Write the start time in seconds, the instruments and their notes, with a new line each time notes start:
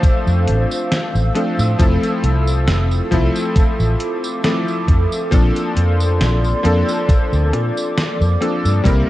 Already playing: electric grand piano F3 A3 C4 D4 A4, ambient pad C5 F5
0.03 ambient pad E6, muted fingered electric bass stroke, kick, closed hi-hat, tambourine
0.27 fingered electric bass F2, tambourine
0.47 fingered electric bass A1, closed hi-hat
0.71 tambourine
0.92 snare, closed hi-hat, tambourine
1.15 fingered electric bass A1, tambourine
1.34 electric grand piano F3 A3 C4 D4 A4, closed hi-hat
1.59 fingered electric bass A2, tambourine
1.79 fingered electric bass F1, electric grand piano F3 A3 C4 E4 A4, ambient pad A4, kick, closed hi-hat, tambourine
2.03 closed hi-hat, tambourine
2.23 fingered electric bass C2, closed hi-hat
2.47 tambourine
2.68 fingered electric bass F1, snare, closed hi-hat, tambourine
2.91 tambourine
3.11 fingered electric bass C2, electric grand piano F3 A3 C4 E4 A4, kick, snare, closed hi-hat
3.36 tambourine
3.56 ambient pad D6, kick, closed hi-hat, tambourine
3.80 fingered electric bass A1, tambourine
4.00 closed hi-hat
4.24 tambourine
4.44 electric grand piano F3 A3 C4 E4 A4, snare, closed hi-hat, tambourine
4.68 tambourine
4.88 fingered electric bass F2, kick, closed hi-hat
5.12 tambourine
5.31 fingered electric bass A#1, electric grand piano F3 A#3 C4 D4 A4, ambient pad D5 C6, kick, closed hi-hat, tambourine
5.56 closed hi-hat, tambourine
5.77 fingered electric bass F2, closed hi-hat
6.00 tambourine
6.21 fingered electric bass A#1, snare, closed hi-hat, tambourine
6.44 tambourine
6.63 fingered electric bass F2, electric grand piano F3 A#3 C4 D4 A4, closed hi-hat
6.89 tambourine
7.09 ambient pad D6, muted fingered electric bass stroke, kick, closed hi-hat, tambourine
7.33 fingered electric bass D2, tambourine
7.53 fingered electric bass A#2, closed hi-hat
7.77 tambourine
7.98 snare, closed hi-hat, tambourine
8.21 fingered electric bass F2, tambourine
8.40 electric grand piano F3 A#3 C4 D4 A4, closed hi-hat
8.65 fingered electric bass G2, tambourine
8.84 fingered electric bass C2, electric grand piano G3 A#3 C4 E4 A#4, ambient pad A#4 E5 C6, kick, closed hi-hat, tambourine